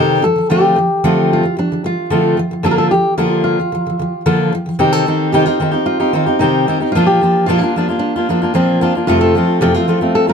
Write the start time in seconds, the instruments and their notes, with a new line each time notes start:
Already playing: steel-string acoustic guitar C3 D#3 C4 D#4 G4, nylon-string guitar A4
0.22 steel-string acoustic guitar D3 F3, nylon-string guitar A4
0.36 steel-string acoustic guitar D3 F3
0.50 steel-string acoustic guitar D3 F3 A3 C4 F4, nylon-string guitar G4
0.76 steel-string acoustic guitar D3 F3
1.04 steel-string acoustic guitar D3 F3 A3 C4 F4
1.33 nylon-string guitar F4
1.43 steel-string acoustic guitar D3 F3
1.57 steel-string acoustic guitar D3 F3, nylon-string guitar D4
1.72 steel-string acoustic guitar D3 F3
1.84 steel-string acoustic guitar D3 F3, nylon-string guitar F4
2.10 steel-string acoustic guitar D3 F3 A3 C4 F4
2.37 steel-string acoustic guitar D3 F3
2.51 steel-string acoustic guitar D3 F3
2.63 steel-string acoustic guitar D3 F3 A#3 D4 F4, nylon-string guitar A4
2.71 nylon-string guitar A#4
2.78 nylon-string guitar A4
2.91 steel-string acoustic guitar D3 F3, nylon-string guitar G4
3.18 steel-string acoustic guitar D3 F3 A#3 D4 F4, nylon-string guitar F4
3.44 nylon-string guitar F4
3.60 steel-string acoustic guitar D3 F3
3.72 steel-string acoustic guitar D3 F3
3.87 steel-string acoustic guitar D3 F3
3.99 steel-string acoustic guitar D3 F3
4.26 steel-string acoustic guitar D3 F3 A#3 D4 F4
4.53 steel-string acoustic guitar D3 F3
4.66 steel-string acoustic guitar D3 F3
4.79 steel-string acoustic guitar C3 D#3 C4 D#4 G4, nylon-string guitar G4
4.93 nylon-string guitar A4
5.06 steel-string acoustic guitar D#3 C4 D#4 G4
5.32 steel-string acoustic guitar C3 D#3 C4 D#4 G4, nylon-string guitar G4
5.46 steel-string acoustic guitar C4 D#4 G4, nylon-string guitar F4
5.60 steel-string acoustic guitar D#3 C4 D#4 G4
5.71 steel-string acoustic guitar C4 D#4 G4
5.86 nylon-string guitar F4
6.00 steel-string acoustic guitar C4 D#4 G4
6.13 steel-string acoustic guitar D#3 C4 D#4 G4
6.26 steel-string acoustic guitar C4 D#4 G4
6.39 steel-string acoustic guitar C3 D#3 C4 D#4 G4, nylon-string guitar D#4
6.67 steel-string acoustic guitar D#3 C4 D#4 G4
6.80 steel-string acoustic guitar C4 D#4 G4
6.92 steel-string acoustic guitar A#2 F3 A#3, nylon-string guitar F4
6.96 steel-string acoustic guitar D4 F4
7.07 nylon-string guitar G4
7.21 steel-string acoustic guitar F3 A#3 D4 F4
7.46 steel-string acoustic guitar A#2 F3 A#3 D4 F4, nylon-string guitar F4
7.58 nylon-string guitar D4, steel-string acoustic guitar F4
7.63 steel-string acoustic guitar A#3 D4
7.76 steel-string acoustic guitar F3 A#3 D4 F4
7.89 steel-string acoustic guitar A#3 D4 F4
7.99 nylon-string guitar D4
8.16 steel-string acoustic guitar A#3 D4 F4
8.29 steel-string acoustic guitar F3 A#3 D4 F4
8.42 steel-string acoustic guitar A#3 D4 F4
8.54 steel-string acoustic guitar A#2 F3 A#3 D4 F4, nylon-string guitar C4
8.81 steel-string acoustic guitar F3 A#3 D4 F4
8.95 steel-string acoustic guitar A#3 D4 F4
9.07 steel-string acoustic guitar F2 C3 F3 A3 C4 F4, nylon-string guitar F4
9.21 nylon-string guitar A4
9.35 steel-string acoustic guitar F3 A3 C4 F4
9.61 steel-string acoustic guitar F2 C3 F3 A3 C4 F4, nylon-string guitar G4
9.74 steel-string acoustic guitar F3 A3 C4 F4, nylon-string guitar F4
9.88 steel-string acoustic guitar F3 A3 C4 F4
10.01 steel-string acoustic guitar F3 A3 C4 F4
10.15 nylon-string guitar A4
10.27 steel-string acoustic guitar F3 A3 C4 F4, nylon-string guitar A#4